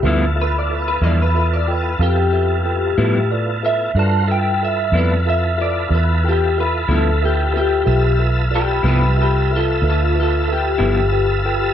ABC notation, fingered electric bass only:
X:1
M:12/8
L:1/8
Q:3/8=61
K:Gmix
V:1 name="Fingered electric bass" clef=bass
D,,3 E,,3 F,,3 A,,3 | G,,3 F,,3 E,,3 D,,3 | B,,,3 C,,3 D,,3 G,,,3 |]